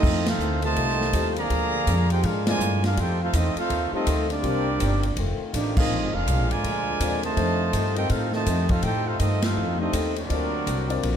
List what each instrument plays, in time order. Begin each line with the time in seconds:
Already playing: trombone section A3 C4 D#4, trumpet section C4 F4 A4 D#5
0.02 steel-string acoustic guitar F2 D#3 A3 C4, upright bass F2, trombone section A3 C4 D#4 F4, kick, crash
0.26 trombone section A3 C4 F4, trumpet section D#4 A4 C5 F5, snare, ride
0.39 upright bass D2, steel-string acoustic guitar F2 D#3 A3 C4, hi-hat pedal
0.62 trombone section C3 D#3 A3, trumpet section F4 C5 D#5 A5, ride
0.76 upright bass C2, steel-string acoustic guitar F2 D#3 A3 C4, kick, ride
0.89 snare
1.01 snare
1.13 upright bass D#2, steel-string acoustic guitar F2 D#3 A3 C4, grand piano G3 C4 F4 A4, kick, hi-hat pedal, ride
1.36 trombone section D3 F3 A#3, trumpet section G#4 D5 F5 A#5, ride
1.48 upright bass D2, steel-string acoustic guitar A#2 F3 G#3 D4, trombone section D3 A#3 G#4, kick, ride
1.85 upright bass F2, steel-string acoustic guitar A#2 F3 G#3 D4, kick, hi-hat pedal, ride
2.10 trumpet section D#4 G#4 C5 G5, trombone section G4, ride
2.23 upright bass G#2, steel-string acoustic guitar A#2 F3 G#3 D4, trombone section G#3 D4 F4, trumpet section D4 G#4 A#4 F5, kick, ride
2.45 trombone section D3 F3 G#3, grand piano C4 F4 A#4 D5, trumpet section F4 A#4 D5 G#5, snare, ride
2.59 upright bass G2, steel-string acoustic guitar A#2 F3 G#3 D4, hi-hat pedal
2.84 trombone section G#3 D4 F4, trumpet section D4 G#4 A#4 F5, snare, ride
2.96 steel-string acoustic guitar F2 D#3 A3 C4, upright bass F2, trombone section F3 A3 C4 G4, trumpet section D#4 A4 C5 G5, kick, ride
3.21 trombone section A3 C4 F4, trumpet section D#4 A4 C5 F5
3.33 upright bass E2, steel-string acoustic guitar F2 D#3 A3 C4, trombone section A3 C4 D#4, trumpet section C4 F4 A4 D#5, kick, hi-hat pedal, ride
3.56 trombone section A3 C4 F4, trumpet section D#4 A4 F5, muted upright bass stroke, ride
3.60 trumpet section C5
3.69 upright bass D#2, steel-string acoustic guitar F2 D#3 A3 C4, kick, ride
3.92 grand piano G3 C4 F4 A4, trombone section A3 C4 D#4, trumpet section C4 F4 A4 D#5, muted upright bass stroke
4.05 upright bass D2, steel-string acoustic guitar F2 D#3 A3 C4, kick, hi-hat pedal, ride
4.30 trombone section G3 A#3 D4, trumpet section C4 G4 A#4 D5, ride
4.42 upright bass C2, steel-string acoustic guitar C3 G3 A#3 D#4, grand piano G3 C4 F4 A#4, trombone section A#3 G4, kick, ride
4.79 upright bass G1, steel-string acoustic guitar C3 G3 A#3 D#4, kick, hi-hat pedal, ride
5.03 ride
5.16 upright bass F1, steel-string acoustic guitar F2 D#3 A3 C4, trombone section D#3 A3 F4, kick, ride
5.52 upright bass A1, steel-string acoustic guitar F2 D#3 A3 C4, trumpet section A#3 D#4 D5, trombone section D4, kick, hi-hat pedal, ride
5.57 trumpet section G4
5.75 trombone section F3 G#3 D#4, trumpet section A#3 F4 G#4 D#5, grand piano C4 F4 A#4 F5, kick, crash
5.89 upright bass A#1, steel-string acoustic guitar A#2 F3 G#3, trombone section D3 G#3 A#3
5.93 steel-string acoustic guitar D4
6.02 upright bass G#1
6.13 upright bass F1, trombone section G#3 D4 F4, trumpet section D4 G#4 A#4 F5
6.27 upright bass C2, steel-string acoustic guitar A#2 F3 G#3 D4, kick, hi-hat pedal, ride
6.39 upright bass A#1
6.49 upright bass G#1, trombone section D3 F3 G#3, trumpet section F4 A#4 D5 G#5, ride
6.63 upright bass D2, steel-string acoustic guitar A#2 F3 G#3, kick, ride
6.68 steel-string acoustic guitar D4
7.00 upright bass D#2, steel-string acoustic guitar A#2 F3 G#3 D4, grand piano C4 F4 A#4 D5, kick, hi-hat pedal, ride
7.23 trombone section C3 D#3 A3, trumpet section F4 C5 D#5 A5, ride
7.36 upright bass F2, steel-string acoustic guitar F2 D#3 A3, trombone section C3 F3 C4 D#4, grand piano A3 D4 G4 C5, kick, ride
7.40 steel-string acoustic guitar C4
7.73 steel-string acoustic guitar F2 D#3 A3 C4, upright bass G2, kick, hi-hat pedal, ride
7.96 grand piano C4 F4 A#4 D#5, trumpet section D#4 A4 C5 G5, trombone section G4, ride
8.09 steel-string acoustic guitar F2 D#3 A3 C4, upright bass A2, trombone section A3 C4 F4, trumpet section D#4 A4 C5 F5, kick, ride
8.32 trombone section C3 D#3 A3, trumpet section F4 C5 D#5 A5, snare
8.46 upright bass F2, steel-string acoustic guitar F2 D#3 A3 C4, kick, hi-hat pedal, ride
8.69 trombone section A3 C4 F4, trumpet section D#4 A4 C5 F5, kick, ride
8.82 steel-string acoustic guitar F2 D#3 A3 C4, upright bass A2, trumpet section D#4 A4 C5 G5, trombone section G4, kick, ride
9.06 trombone section A3 C4 F4, trumpet section D#4 A4 C5 F5
9.19 steel-string acoustic guitar F2 D#3 A3 C4, upright bass G2, trombone section A3 C4 D#4, trumpet section C4 F4 A4 D#5, kick, hi-hat pedal, ride
9.42 trombone section A3 C4 F4, trumpet section D#4 A4 C5 F5, snare, ride
9.55 steel-string acoustic guitar F2 D#3 A3 C4, upright bass F2
9.79 grand piano A3 D4 G4 C5, trombone section A3 C4 D#4, trumpet section C4 F4 A4 D#5
9.93 upright bass D#2, steel-string acoustic guitar F2 D#3 A3 C4, kick, hi-hat pedal, ride
10.16 trombone section F#3 A#3 D4, trumpet section C4 F#4 A#4 D5, ride
10.29 upright bass D2, steel-string acoustic guitar D3 A#3 C4 F#4, trombone section F#3 A#3 D4, grand piano C4 F4 A#4 D5, kick, ride
10.66 upright bass C2, steel-string acoustic guitar D3 A#3 C4 F#4, kick, hi-hat pedal, ride
10.88 grand piano C4 F4 A#4 D5, ride
11.03 upright bass A#1, steel-string acoustic guitar D3 A#3 C4 F#4, kick, ride